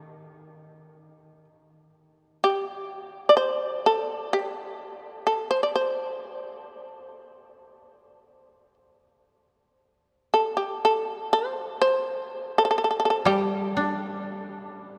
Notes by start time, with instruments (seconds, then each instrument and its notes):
Already playing: koto D#3, shamisen D#4
2.44 shamisen G4
3.29 shamisen D5
3.37 shamisen C5
3.86 shamisen A4
4.33 shamisen G4
5.27 shamisen A4
5.51 shamisen C5
5.63 shamisen D5
5.76 shamisen C5
10.34 shamisen A4
10.57 shamisen G4
10.85 shamisen A4
11.33 shamisen C5
11.82 shamisen C5
12.58 shamisen A4
12.65 shamisen A4
12.71 shamisen A4
12.78 shamisen A4
12.84 shamisen A4
12.91 shamisen A4
13.00 shamisen A4
13.05 shamisen A4
13.10 shamisen A4
13.25 koto G3, shamisen G4
13.77 koto D4